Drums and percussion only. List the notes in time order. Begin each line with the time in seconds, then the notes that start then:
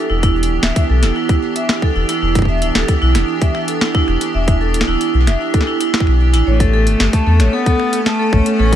0.23 kick, closed hi-hat
0.43 closed hi-hat
0.63 snare
0.76 kick, closed hi-hat
1.03 snare, closed hi-hat
1.29 kick, closed hi-hat
1.56 closed hi-hat
1.69 snare
1.82 kick
2.09 closed hi-hat
2.35 kick, closed hi-hat
2.39 kick
2.42 kick
2.45 kick
2.62 closed hi-hat
2.75 snare
2.88 kick, closed hi-hat
3.15 finger snap, snare, closed hi-hat
3.42 kick, closed hi-hat
3.55 finger snap
3.68 closed hi-hat
3.81 snare
3.95 kick
4.08 finger snap
4.21 closed hi-hat
4.48 kick, closed hi-hat
4.74 closed hi-hat
4.81 snare
5.01 closed hi-hat
5.27 finger snap, snare, closed hi-hat
5.54 kick, closed hi-hat
5.61 snare
5.81 closed hi-hat
5.94 snare
6.00 kick
6.07 finger snap
6.34 closed hi-hat
6.60 kick, closed hi-hat
6.87 closed hi-hat
7.00 snare
7.13 kick, closed hi-hat
7.40 finger snap, snare, closed hi-hat
7.66 kick, closed hi-hat
7.80 finger snap
7.93 closed hi-hat
8.06 snare
8.33 finger snap, kick
8.46 closed hi-hat
8.73 kick, closed hi-hat